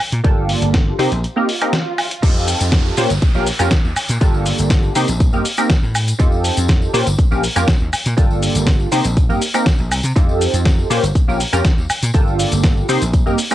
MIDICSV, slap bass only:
0, 0, Header, 1, 3, 480
1, 0, Start_track
1, 0, Tempo, 495868
1, 236, Time_signature, 4, 2, 24, 8
1, 13113, End_track
2, 0, Start_track
2, 0, Title_t, "Slap bass"
2, 0, Program_c, 0, 36
2, 121, Note_on_c, 0, 46, 90
2, 190, Note_off_c, 0, 46, 0
2, 237, Note_on_c, 0, 31, 94
2, 522, Note_off_c, 0, 31, 0
2, 598, Note_on_c, 0, 31, 92
2, 881, Note_off_c, 0, 31, 0
2, 956, Note_on_c, 0, 48, 102
2, 1031, Note_off_c, 0, 48, 0
2, 1082, Note_on_c, 0, 34, 86
2, 1197, Note_off_c, 0, 34, 0
2, 2159, Note_on_c, 0, 41, 98
2, 2442, Note_off_c, 0, 41, 0
2, 2524, Note_on_c, 0, 41, 93
2, 2804, Note_off_c, 0, 41, 0
2, 2879, Note_on_c, 0, 46, 101
2, 2952, Note_off_c, 0, 46, 0
2, 3005, Note_on_c, 0, 31, 88
2, 3073, Note_off_c, 0, 31, 0
2, 3241, Note_on_c, 0, 34, 95
2, 3382, Note_off_c, 0, 34, 0
2, 3482, Note_on_c, 0, 41, 87
2, 3551, Note_off_c, 0, 41, 0
2, 3723, Note_on_c, 0, 39, 87
2, 3791, Note_off_c, 0, 39, 0
2, 3964, Note_on_c, 0, 46, 97
2, 4032, Note_off_c, 0, 46, 0
2, 4079, Note_on_c, 0, 31, 100
2, 4362, Note_off_c, 0, 31, 0
2, 4446, Note_on_c, 0, 31, 92
2, 4725, Note_off_c, 0, 31, 0
2, 4800, Note_on_c, 0, 48, 98
2, 4873, Note_off_c, 0, 48, 0
2, 4924, Note_on_c, 0, 34, 90
2, 5162, Note_on_c, 0, 43, 100
2, 5176, Note_off_c, 0, 34, 0
2, 5231, Note_off_c, 0, 43, 0
2, 5642, Note_on_c, 0, 45, 74
2, 5923, Note_off_c, 0, 45, 0
2, 5999, Note_on_c, 0, 41, 98
2, 6283, Note_off_c, 0, 41, 0
2, 6364, Note_on_c, 0, 41, 94
2, 6644, Note_off_c, 0, 41, 0
2, 6715, Note_on_c, 0, 46, 101
2, 6790, Note_off_c, 0, 46, 0
2, 6842, Note_on_c, 0, 31, 90
2, 6911, Note_off_c, 0, 31, 0
2, 7083, Note_on_c, 0, 34, 94
2, 7223, Note_off_c, 0, 34, 0
2, 7321, Note_on_c, 0, 41, 86
2, 7390, Note_off_c, 0, 41, 0
2, 7561, Note_on_c, 0, 39, 85
2, 7630, Note_off_c, 0, 39, 0
2, 7803, Note_on_c, 0, 46, 98
2, 7871, Note_off_c, 0, 46, 0
2, 7916, Note_on_c, 0, 31, 94
2, 8201, Note_off_c, 0, 31, 0
2, 8281, Note_on_c, 0, 31, 91
2, 8563, Note_off_c, 0, 31, 0
2, 8636, Note_on_c, 0, 48, 100
2, 8711, Note_off_c, 0, 48, 0
2, 8760, Note_on_c, 0, 34, 87
2, 8996, Note_on_c, 0, 43, 102
2, 9011, Note_off_c, 0, 34, 0
2, 9068, Note_off_c, 0, 43, 0
2, 9480, Note_on_c, 0, 34, 89
2, 9595, Note_off_c, 0, 34, 0
2, 9595, Note_on_c, 0, 36, 87
2, 9670, Note_off_c, 0, 36, 0
2, 9716, Note_on_c, 0, 48, 99
2, 9788, Note_off_c, 0, 48, 0
2, 9836, Note_on_c, 0, 41, 96
2, 10121, Note_off_c, 0, 41, 0
2, 10199, Note_on_c, 0, 41, 94
2, 10482, Note_off_c, 0, 41, 0
2, 10555, Note_on_c, 0, 46, 101
2, 10630, Note_off_c, 0, 46, 0
2, 10679, Note_on_c, 0, 31, 92
2, 10749, Note_off_c, 0, 31, 0
2, 10921, Note_on_c, 0, 34, 98
2, 11062, Note_off_c, 0, 34, 0
2, 11163, Note_on_c, 0, 41, 90
2, 11231, Note_off_c, 0, 41, 0
2, 11401, Note_on_c, 0, 39, 81
2, 11471, Note_off_c, 0, 39, 0
2, 11643, Note_on_c, 0, 46, 98
2, 11711, Note_off_c, 0, 46, 0
2, 11756, Note_on_c, 0, 31, 96
2, 12041, Note_off_c, 0, 31, 0
2, 12124, Note_on_c, 0, 31, 96
2, 12404, Note_off_c, 0, 31, 0
2, 12477, Note_on_c, 0, 48, 104
2, 12551, Note_off_c, 0, 48, 0
2, 12602, Note_on_c, 0, 34, 89
2, 12841, Note_on_c, 0, 43, 106
2, 12856, Note_off_c, 0, 34, 0
2, 12910, Note_off_c, 0, 43, 0
2, 13113, End_track
3, 0, Start_track
3, 0, Title_t, "Muted slap bass strokes"
3, 3119, Note_on_c, 9, 29, 42
3, 3216, Note_off_c, 9, 29, 0
3, 3837, Note_on_c, 9, 29, 42
3, 3934, Note_off_c, 9, 29, 0
3, 6956, Note_on_c, 9, 29, 41
3, 7052, Note_off_c, 9, 29, 0
3, 7679, Note_on_c, 9, 29, 43
3, 7776, Note_off_c, 9, 29, 0
3, 10798, Note_on_c, 9, 29, 41
3, 10895, Note_off_c, 9, 29, 0
3, 11519, Note_on_c, 9, 29, 41
3, 11615, Note_off_c, 9, 29, 0
3, 13113, End_track
0, 0, End_of_file